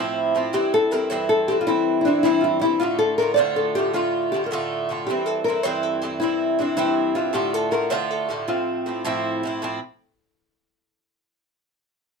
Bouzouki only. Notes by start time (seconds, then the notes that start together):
Already playing: A2 F3
0.00 C4 E4
0.35 A2 F3 C4 E4
0.53 G2 E3 C4 E4
0.91 G2 E3 C4 E4
1.11 G2 E3 C4 E4
1.48 G2 E3 C4 E4
1.67 G2 E3 C4 E4
2.05 G2 E3 C4 E4
2.24 G2 E3 C4 E4
2.63 G2 E3 C4 E4
2.81 A2 D3 A3 F4
3.18 A2 D3 A3 F4
3.37 A2 D3 A3 F4
3.76 A2 D3 A3 F4
3.94 A2 D3 A3 F4
4.33 A2 D3 A3 F4
4.52 A2 D3 A3 F4
4.89 A2 D3 A3 F4
5.09 G2 E3 C4 E4
5.47 G2 E3 C4 E4
5.64 G2 E3 C4 E4
6.02 G2 E3 C4 E4
6.21 G2 E3 C4 E4
6.59 G2 E3 C4 E4
6.77 G2 E3 C4 E4
7.15 G2 E3 C4 E4
7.33 A2 D3 A3 F4
7.71 A2 D3 A3 F4
7.90 A2 D3 A3 F4
8.29 A2 D3 A3 F4
8.48 A2 F3 C4
8.86 A2 F3 C4 E4
9.05 A2 F3 C4 E4
9.43 A2 F3 C4 E4
9.62 A2 F3 C4 E4